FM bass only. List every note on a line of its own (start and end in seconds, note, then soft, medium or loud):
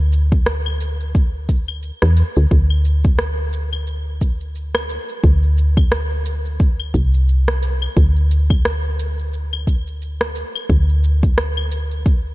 0.00 1.92 D2 medium
2.03 2.23 E2 medium
2.37 2.46 D2 loud
2.51 4.98 D2 medium
5.24 6.94 D2 medium
6.94 7.88 C2 medium
7.97 10.44 D2 medium
10.70 12.35 D2 medium